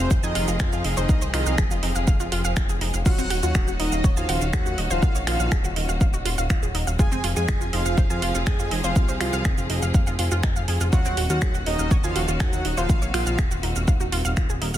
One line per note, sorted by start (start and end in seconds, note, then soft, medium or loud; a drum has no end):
0.00 3.02 F3 medium
0.00 3.02 C4 medium
0.00 3.02 G#4 medium
0.11 0.21 F1 loud
0.11 0.16 C5 loud
0.11 0.16 C6 medium
0.11 kick loud
0.11 shaker medium
0.23 0.33 F2 medium
0.23 0.47 D#4 loud
0.23 0.46 D#5 loud
0.23 0.28 G#5 medium
0.23 0.28 G#6 medium
0.23 shaker medium
0.35 0.46 F1 loud
0.35 0.41 F4 loud
0.35 0.41 F5 medium
0.35 open hi-hat loud
0.48 0.58 F1 medium
0.48 0.56 F4 medium
0.48 0.56 F5 medium
0.48 shaker medium
0.60 0.71 F2 loud
0.60 0.83 F4 loud
0.60 0.65 G#4 loud
0.60 0.83 F5 medium
0.60 0.65 G#5 medium
0.60 finger snap loud
0.60 kick loud
0.60 shaker medium
0.72 0.83 F2 medium
0.72 0.76 F4 medium
0.72 0.76 F5 medium
0.72 shaker medium
0.84 0.95 F1 medium
0.84 0.93 D#4 medium
0.84 0.93 D#5 medium
0.84 open hi-hat loud
0.97 1.07 F1 medium
0.97 1.20 D#4 loud
0.97 1.05 C5 loud
0.97 1.20 D#5 medium
0.97 1.05 C6 medium
0.97 shaker medium
1.09 1.20 C2 loud
1.09 1.14 F5 medium
1.09 1.14 F6 medium
1.09 kick loud
1.09 shaker medium
1.22 1.32 C2 medium
1.22 1.29 C5 medium
1.22 1.29 C6 medium
1.22 shaker medium
1.34 1.44 C2 medium
1.34 1.57 D#4 medium
1.34 1.42 F4 loud
1.34 1.57 D#5 medium
1.34 1.42 F5 medium
1.34 finger snap medium
1.34 open hi-hat loud
1.46 1.56 C2 medium
1.46 1.54 F5 loud
1.46 1.54 F6 medium
1.46 shaker medium
1.58 1.69 F1 loud
1.58 1.64 G#4 loud
1.58 1.64 G#5 medium
1.58 finger snap loud
1.58 kick loud
1.58 shaker medium
1.71 1.81 F1 medium
1.71 1.74 F4 medium
1.71 1.74 F5 medium
1.71 shaker medium
1.83 1.94 F1 loud
1.83 1.91 D#4 medium
1.83 1.91 D#5 medium
1.83 open hi-hat loud
1.95 2.06 F1 medium
1.95 2.01 F5 medium
1.95 2.01 F6 medium
1.95 shaker medium
2.07 2.18 F1 loud
2.07 2.13 F5 medium
2.07 2.13 F6 medium
2.07 kick loud
2.07 shaker medium
2.20 2.30 F1 medium
2.20 2.25 F4 medium
2.20 2.25 F5 medium
2.20 shaker medium
2.32 2.43 F1 loud
2.32 2.40 F4 loud
2.32 2.40 F5 medium
2.32 open hi-hat loud
2.45 2.55 F1 medium
2.45 2.52 F5 loud
2.45 2.52 F6 medium
2.45 shaker medium
2.57 2.67 F1 loud
2.57 finger snap loud
2.57 kick loud
2.57 shaker medium
2.69 2.79 F1 medium
2.69 2.74 G#4 medium
2.69 2.74 G#5 medium
2.69 shaker medium
2.81 2.92 F1 medium
2.81 2.89 D#4 medium
2.81 2.89 D#5 medium
2.81 open hi-hat loud
2.94 3.04 F1 medium
2.94 2.99 F5 medium
2.94 2.99 F6 medium
2.94 shaker medium
3.06 3.16 D#1 loud
3.06 6.95 D#3 medium
3.06 6.95 C#4 medium
3.06 3.11 F4 loud
3.06 3.29 F#4 loud
3.06 6.95 F#4 medium
3.06 3.11 F5 medium
3.06 3.29 F#5 loud
3.06 kick loud
3.06 crash medium
3.06 shaker medium
3.18 3.29 D#1 medium
3.18 3.21 C4 loud
3.18 3.21 C5 medium
3.18 shaker medium
3.30 3.41 D#1 loud
3.30 3.36 F#4 loud
3.30 3.36 F#5 medium
3.30 open hi-hat loud
3.43 3.53 D#2 medium
3.43 3.51 F4 medium
3.43 3.66 F#4 loud
3.43 3.51 F5 medium
3.43 3.66 F#5 loud
3.43 shaker medium
3.55 3.66 D#1 loud
3.55 3.60 G#4 loud
3.55 3.60 G#5 medium
3.55 finger snap loud
3.55 kick loud
3.55 shaker medium
3.68 3.78 D#1 medium
3.68 3.71 F#4 medium
3.68 3.71 F#5 medium
3.68 shaker medium
3.80 3.90 D#1 medium
3.80 4.03 D#4 loud
3.80 3.88 D#4 medium
3.80 3.88 D#5 medium
3.80 4.03 D#5 loud
3.80 open hi-hat loud
3.92 4.02 D#1 medium
3.92 3.95 F5 medium
3.92 3.95 F6 medium
3.92 shaker medium
4.04 4.15 D#1 loud
4.04 4.10 C#5 loud
4.04 4.10 C#6 medium
4.04 kick loud
4.04 shaker medium
4.17 4.27 D#2 medium
4.17 4.40 F4 loud
4.17 4.40 F5 medium
4.17 4.22 G#5 medium
4.17 4.22 G#6 medium
4.17 shaker medium
4.29 4.39 D#1 loud
4.29 4.34 F#4 loud
4.29 4.34 F#5 medium
4.29 open hi-hat loud
4.41 4.51 D#1 medium
4.41 4.49 F4 medium
4.41 4.49 F5 medium
4.41 shaker medium
4.53 4.64 D#2 loud
4.53 4.77 F#4 loud
4.53 4.59 G#4 loud
4.53 4.77 F#5 medium
4.53 4.59 G#5 medium
4.53 finger snap loud
4.53 kick loud
4.53 shaker medium
4.66 4.76 D#2 medium
4.66 4.69 F#4 medium
4.66 4.69 F#5 medium
4.66 shaker medium
4.78 4.89 D#1 medium
4.78 4.86 D#4 medium
4.78 4.86 D#5 medium
4.78 open hi-hat loud
4.91 5.01 D#1 medium
4.91 5.14 F4 loud
4.91 4.98 C5 loud
4.91 5.14 F5 loud
4.91 4.98 C6 medium
4.91 shaker medium
5.02 5.13 A#1 loud
5.02 5.08 F5 medium
5.02 5.08 F6 medium
5.02 kick loud
5.02 shaker medium
5.15 5.25 A#1 medium
5.15 5.23 C#5 medium
5.15 5.23 C#6 medium
5.15 shaker medium
5.27 5.38 A#1 loud
5.27 5.35 F4 loud
5.27 5.50 F4 loud
5.27 5.35 F5 medium
5.27 5.50 F5 loud
5.27 finger snap medium
5.27 open hi-hat loud
5.40 5.50 A#1 medium
5.40 5.47 F5 loud
5.40 5.47 F6 medium
5.40 shaker medium
5.52 5.62 D#1 loud
5.52 5.57 G#4 loud
5.52 5.57 G#5 medium
5.52 finger snap loud
5.52 kick loud
5.52 shaker medium
5.64 5.74 D#1 medium
5.64 5.67 F#4 medium
5.64 5.67 F#5 medium
5.64 shaker medium
5.76 5.87 D#1 medium
5.76 5.84 D#4 medium
5.76 5.84 D#5 medium
5.76 open hi-hat loud
5.89 5.99 D#1 medium
5.89 5.94 F5 medium
5.89 5.94 F6 medium
5.89 shaker medium
6.01 6.12 D#1 loud
6.01 6.06 F5 medium
6.01 6.06 F6 medium
6.01 kick loud
6.01 shaker medium
6.13 6.24 D#1 medium
6.13 6.19 F#4 medium
6.13 6.19 F#5 medium
6.13 shaker medium
6.25 6.36 D#1 loud
6.25 6.33 F4 loud
6.25 6.33 F5 medium
6.25 open hi-hat loud
6.38 6.48 D#1 medium
6.38 6.46 F5 loud
6.38 6.46 F6 medium
6.38 shaker medium
6.50 6.61 D#1 loud
6.50 6.55 F4 medium
6.50 6.55 F5 medium
6.50 finger snap loud
6.50 kick loud
6.50 shaker medium
6.63 6.73 D#1 medium
6.63 6.68 G#4 medium
6.63 6.68 G#5 medium
6.63 shaker medium
6.75 6.85 D#1 medium
6.75 6.83 D#4 medium
6.75 6.83 D#5 medium
6.75 open hi-hat loud
6.87 6.97 D#1 medium
6.87 6.92 F5 medium
6.87 6.92 F6 medium
6.87 shaker medium
6.99 7.10 F1 loud
6.99 10.89 F3 medium
6.99 10.89 C4 medium
6.99 7.05 F4 loud
6.99 10.89 G#4 medium
6.99 7.23 G#4 loud
6.99 7.05 F5 medium
6.99 7.23 G#5 loud
6.99 kick loud
6.99 shaker medium
7.12 7.22 F1 medium
7.12 7.15 C4 loud
7.12 7.15 C5 medium
7.12 shaker medium
7.24 7.34 F1 medium
7.24 7.29 F4 loud
7.24 7.29 F5 medium
7.24 open hi-hat loud
7.36 7.47 F2 medium
7.36 7.44 F4 medium
7.36 7.60 G#4 loud
7.36 7.44 F5 medium
7.36 7.60 G#5 loud
7.36 shaker medium
7.48 7.59 F1 loud
7.48 7.54 G#4 loud
7.48 7.54 G#5 medium
7.48 finger snap loud
7.48 kick loud
7.48 shaker medium
7.61 7.71 F1 medium
7.61 7.64 F4 medium
7.61 7.64 F5 medium
7.61 shaker medium
7.73 7.84 F1 loud
7.73 7.81 D#4 medium
7.73 7.96 F4 loud
7.73 7.81 D#5 medium
7.73 7.96 F5 loud
7.73 open hi-hat loud
7.86 7.96 F1 medium
7.86 7.89 F5 medium
7.86 7.89 F6 medium
7.86 shaker medium
7.98 8.08 F1 loud
7.98 8.03 C5 loud
7.98 8.03 C6 medium
7.98 kick loud
7.98 shaker medium
8.10 8.20 F2 medium
8.10 8.33 F4 loud
8.10 8.33 F5 loud
8.10 8.15 G#5 medium
8.10 8.15 G#6 medium
8.10 shaker medium
8.22 8.33 F1 loud
8.22 8.28 F4 loud
8.22 8.28 F5 medium
8.22 open hi-hat loud
8.35 8.45 F1 medium
8.35 8.42 F4 medium
8.35 8.42 F5 medium
8.35 shaker medium
8.47 8.57 F2 loud
8.47 8.70 G#4 loud
8.47 8.52 G#4 loud
8.47 8.52 G#5 medium
8.47 8.70 G#5 medium
8.47 finger snap loud
8.47 kick loud
8.47 shaker medium
8.59 8.70 F2 medium
8.59 8.62 F4 medium
8.59 8.62 F5 medium
8.59 shaker medium
8.71 8.82 F1 medium
8.71 8.79 D#4 medium
8.71 8.79 D#5 medium
8.71 open hi-hat loud
8.84 8.94 F1 medium
8.84 9.07 F4 loud
8.84 8.92 C5 loud
8.84 9.07 F5 medium
8.84 8.92 C6 medium
8.84 shaker medium
8.96 9.07 C2 loud
8.96 9.01 F5 medium
8.96 9.01 F6 medium
8.96 kick loud
8.96 shaker medium
9.09 9.19 C2 medium
9.09 9.16 C5 medium
9.09 9.16 C6 medium
9.09 shaker medium
9.20 9.31 C2 loud
9.20 9.29 F4 loud
9.20 9.44 F4 loud
9.20 9.44 F5 medium
9.20 9.29 F5 medium
9.20 finger snap medium
9.20 open hi-hat loud
9.33 9.43 C2 medium
9.33 9.41 F5 loud
9.33 9.41 F6 medium
9.33 shaker medium
9.45 9.56 F1 loud
9.45 9.51 G#4 loud
9.45 9.51 G#5 medium
9.45 finger snap loud
9.45 kick loud
9.45 shaker medium
9.58 9.68 F1 medium
9.58 9.61 F4 medium
9.58 9.61 F5 medium
9.58 shaker medium
9.70 9.80 F1 medium
9.70 9.78 D#4 medium
9.70 9.78 D#5 medium
9.70 open hi-hat loud
9.82 9.92 F1 medium
9.82 9.87 F5 medium
9.82 9.87 F6 medium
9.82 shaker medium
9.94 10.05 F1 loud
9.94 10.00 F5 medium
9.94 10.00 F6 medium
9.94 kick loud
9.94 shaker medium
10.07 10.17 F1 medium
10.07 10.12 F4 medium
10.07 10.12 F5 medium
10.07 shaker medium
10.19 10.30 F1 loud
10.19 10.24 F4 medium
10.19 10.24 F5 medium
10.19 open hi-hat loud
10.31 10.42 F1 medium
10.31 10.35 F4 loud
10.31 10.35 F5 medium
10.31 shaker medium
10.43 10.54 F1 loud
10.43 10.52 D#4 medium
10.43 10.52 D#5 medium
10.43 finger snap loud
10.43 kick loud
10.43 shaker medium
10.56 10.66 F1 medium
10.56 10.59 F5 loud
10.56 10.59 F6 medium
10.56 shaker medium
10.68 10.79 F1 loud
10.68 10.73 G#4 medium
10.68 10.73 G#5 medium
10.68 open hi-hat loud
10.81 10.91 F1 medium
10.81 10.86 F4 medium
10.81 10.86 F5 medium
10.81 shaker medium
10.93 11.03 D#1 loud
10.93 14.78 D#3 medium
10.93 12.87 C#4 medium
10.93 10.98 F4 loud
10.93 11.16 F#4 loud
10.93 14.78 F#4 medium
10.93 10.98 F5 medium
10.93 11.16 F#5 loud
10.93 kick loud
10.93 shaker medium
11.05 11.15 D#1 medium
11.05 11.08 C4 loud
11.05 11.08 C5 medium
11.05 shaker medium
11.17 11.28 D#1 medium
11.17 11.23 F#4 loud
11.17 11.23 F#5 medium
11.17 open hi-hat loud
11.30 11.40 D#2 medium
11.30 11.38 F4 medium
11.30 11.53 F#4 medium
11.30 11.38 F5 medium
11.30 11.53 F#5 loud
11.30 shaker medium
11.42 11.53 D#1 loud
11.42 11.47 G#4 loud
11.42 11.47 G#5 medium
11.42 finger snap loud
11.42 kick loud
11.42 shaker medium
11.54 11.65 D#1 medium
11.54 11.58 F#4 medium
11.54 11.58 F#5 medium
11.54 shaker medium
11.66 11.77 D#1 medium
11.66 11.90 D#4 loud
11.66 11.75 D#4 medium
11.66 11.90 D#5 loud
11.66 11.75 D#5 medium
11.66 open hi-hat loud
11.79 11.89 D#1 medium
11.79 11.82 F5 medium
11.79 11.82 F6 medium
11.79 shaker medium
11.91 12.02 D#1 loud
11.91 11.96 C#5 loud
11.91 11.96 C#6 medium
11.91 kick loud
11.91 shaker medium
12.04 12.14 D#2 medium
12.04 12.27 F4 loud
12.04 12.27 F5 medium
12.04 12.09 G#5 medium
12.04 12.09 G#6 medium
12.04 shaker medium
12.16 12.26 D#1 loud
12.16 12.21 F#4 loud
12.16 12.21 F#5 medium
12.16 open hi-hat loud
12.28 12.38 D#1 medium
12.28 12.36 F4 medium
12.28 12.36 F5 medium
12.28 shaker medium
12.40 12.51 D#2 loud
12.40 12.63 F#4 loud
12.40 12.46 G#4 loud
12.40 12.63 F#5 medium
12.40 12.46 G#5 medium
12.40 finger snap loud
12.40 kick loud
12.40 shaker medium
12.53 12.63 D#2 medium
12.53 12.56 F#4 medium
12.53 12.56 F#5 medium
12.53 shaker medium
12.65 12.75 D#1 medium
12.65 12.73 D#4 medium
12.65 12.73 D#5 medium
12.65 open hi-hat loud
12.77 12.87 D#1 medium
12.77 13.01 F4 loud
12.77 12.85 C5 loud
12.77 13.01 F5 loud
12.77 12.85 C6 medium
12.77 shaker medium
12.89 13.00 A#1 loud
12.89 14.78 C4 medium
12.89 12.95 F5 medium
12.89 12.95 F6 medium
12.89 kick loud
12.89 shaker medium
13.02 13.12 A#1 medium
13.02 13.10 C#5 medium
13.02 13.10 C#6 medium
13.02 shaker medium
13.14 13.25 A#1 loud
13.14 13.22 F4 loud
13.14 13.37 F4 loud
13.14 13.22 F5 medium
13.14 13.37 F5 medium
13.14 finger snap medium
13.14 open hi-hat loud
13.26 13.37 A#1 medium
13.26 13.34 F5 loud
13.26 13.34 F6 medium
13.26 shaker medium
13.38 13.49 D#1 loud
13.38 13.44 G#4 loud
13.38 13.44 G#5 medium
13.38 finger snap loud
13.38 kick loud
13.38 shaker medium
13.51 13.61 D#1 medium
13.51 13.54 F#4 medium
13.51 13.54 F#5 medium
13.51 shaker medium
13.63 13.74 D#1 loud
13.63 13.71 D#4 medium
13.63 13.71 D#5 medium
13.63 open hi-hat loud
13.76 13.86 D#1 medium
13.76 13.81 F5 medium
13.76 13.81 F6 medium
13.76 shaker medium
13.88 13.98 D#1 loud
13.88 13.93 F5 medium
13.88 13.93 F6 medium
13.88 kick loud
13.88 shaker medium
14.00 14.10 D#1 medium
14.00 14.05 F#4 medium
14.00 14.05 F#5 medium
14.00 shaker medium
14.12 14.23 D#1 loud
14.12 14.20 F4 loud
14.12 14.20 F5 medium
14.12 open hi-hat loud
14.25 14.35 D#1 medium
14.25 14.33 F5 loud
14.25 14.33 F6 medium
14.25 shaker medium
14.37 14.48 D#1 loud
14.37 14.42 F4 medium
14.37 finger snap loud
14.37 kick loud
14.37 shaker medium
14.49 14.60 D#1 medium
14.49 14.55 G#4 medium
14.49 14.55 G#5 medium
14.49 shaker medium
14.61 14.72 D#1 loud
14.61 14.70 D#4 medium
14.61 14.70 D#5 medium
14.61 open hi-hat loud
14.74 14.78 D#1 medium
14.74 14.78 F5 medium
14.74 14.78 F6 medium
14.74 shaker medium